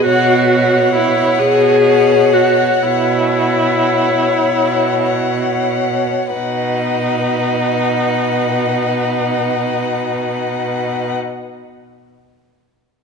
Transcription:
0.05 B2 F#4 C#5 F#5
0.50 C#5 F#5
0.95 E4
1.39 B2 G#4
1.85 C#5 F#5
2.33 F#4
2.83 B2 E4
3.33 C#5 F#5
4.43 B2
5.04 C#5 F#5
6.32 B2 D#4 B4 F#5

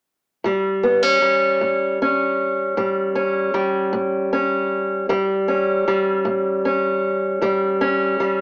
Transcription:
0.44 A2 G3
0.83 B3
1.03 C#4
1.22 G3
1.61 A2
2.02 C#4
2.77 A2 G3
3.15 C#4
3.54 G3
3.93 A2
4.33 C#4
5.09 A2 G3
5.48 C#4
5.88 G3
6.25 A2
6.65 C#4
7.41 A2 G3
7.81 C#4
8.20 G3

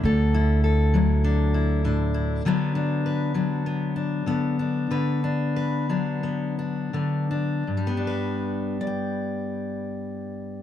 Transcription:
Already playing: F#3 D4
0.03 D2 D3 A4
0.34 E4
0.64 A4
0.94 F#3 E4
1.24 D4
1.54 E4
1.84 A2 D4
2.14 E4
2.45 D3 F#3 B3 D4 B4
2.75 D4
3.06 B4
3.34 F#3 D4
3.66 B3
3.96 D4
4.26 D3 B3
4.59 D4
4.91 D3 B4
5.24 D4
5.56 B4
5.89 F#3 D4
6.23 B3
6.59 D4
6.93 D3 B3
7.31 D4
7.67 G2
7.77 G3
7.87 B3
7.97 D4
8.07 B4
8.81 D5
8.87 G5

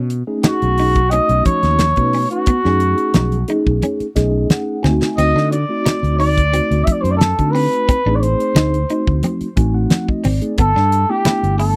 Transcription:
Already playing: B2 C#4
0.10 closed hi-hat
0.27 A3 C#4 D#4 G#4
0.43 D#4 F#4, snare, closed hi-hat, high conga
0.62 B1, closed hi-hat
0.78 D#4, open hi-hat
0.95 kick, closed hi-hat
1.11 A3 C#4 D#4 F#4 D#5, closed hi-hat, muted conga
1.29 B1, closed hi-hat
1.45 C#5, kick, closed hi-hat, muted conga, high conga
1.63 D#2, snare, closed hi-hat
1.79 snare, closed hi-hat, muted conga, high conga
1.96 B2 A3 C#4 D#4 B4, kick, closed hi-hat
2.13 C#4, open hi-hat
2.31 F#4, closed hi-hat
2.46 B3, kick, closed hi-hat, muted conga
2.64 F#2 A3 C#4 D#4 G#4, snare
2.80 closed hi-hat
2.98 closed hi-hat
3.14 B1 D#4, snare, closed hi-hat, high conga
3.32 closed hi-hat
3.48 A3 C#4 D#4 G#4, closed hi-hat
3.67 B1, kick
3.82 C#4, closed hi-hat, muted conga, high conga
4.00 muted fretless electric bass stroke, closed hi-hat
4.16 B1 A3 C#4 D#4 G#4 D#5, kick, snare, closed hi-hat, muted conga
4.50 F#5, snare, closed hi-hat, muted conga, high conga
4.83 D2 A3 C4 D#4 F#4 G#5, snare, low conga
5.02 snare
5.17 D2 C4 D#5, closed hi-hat, splash, muted conga
5.35 D3 D4, snare
5.51 D5, closed hi-hat
5.69 A3 C4 D#4 F#4
5.86 D#4, snare, closed hi-hat, high conga
6.03 D2, closed hi-hat
6.19 D#4 D5, open hi-hat
6.38 kick, closed hi-hat
6.52 A3 C4 D#4 F#4, closed hi-hat, muted conga
6.71 D2, closed hi-hat
6.84 E5, muted fretless electric bass stroke, kick, closed hi-hat, muted conga, high conga
6.92 D5
7.02 F#2 C5, closed hi-hat
7.11 D5
7.17 A4
7.21 snare, closed hi-hat, muted conga, high conga
7.39 D3 A3 C4 D#4 F#4, kick, closed hi-hat
7.51 C4 B4
7.55 open hi-hat
7.73 closed hi-hat
7.88 C4, kick, closed hi-hat, muted conga
8.06 A1 A3 C4 D4 D#4 G#4
8.15 D5
8.21 C5, closed hi-hat
8.40 closed hi-hat
8.55 D2 D#4, snare, closed hi-hat, high conga
8.74 closed hi-hat
8.90 A3 C4 D#4 F#4, closed hi-hat
9.07 D2, kick
9.23 C4, closed hi-hat, muted conga, high conga
9.41 muted fretless electric bass stroke, closed hi-hat
9.56 A1 A3 C4 D#4 F#4 G#5, kick, closed hi-hat, muted conga
9.74 F#5
9.90 F#5, snare, closed hi-hat, muted conga, high conga
10.08 D#5, kick
10.24 G#1 C4 D5, open hi-hat, low conga
10.41 A3 C4 D#4 G#4, closed hi-hat
10.58 G1 B3 A4, kick, closed hi-hat, muted conga
10.76 G2 D4, snare
10.92 closed hi-hat
11.09 A3 B3 D4 E4 G4
11.25 E4, snare, closed hi-hat, high conga
11.43 G1, closed hi-hat
11.59 E4 A4, open hi-hat

